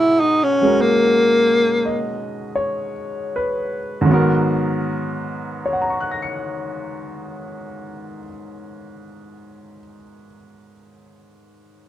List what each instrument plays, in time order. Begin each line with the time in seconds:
Already playing: upright piano G#2 B2 F#3 G#4
0.00 tenor saxophone E4
0.20 tenor saxophone D#4
0.43 tenor saxophone C#4
0.62 upright piano F#3 G#3 C#4 A#4
0.81 tenor saxophone A#3
1.86 upright piano D#5
2.56 upright piano C#5
3.36 upright piano B4
4.01 upright piano G#2 D#3
4.07 upright piano F#3 B3
4.13 upright piano A#4
5.66 upright piano C#5
5.73 upright piano F#5
5.82 upright piano A#5
5.90 upright piano C#6
6.00 upright piano F#6
6.11 upright piano A#6
6.22 upright piano C#7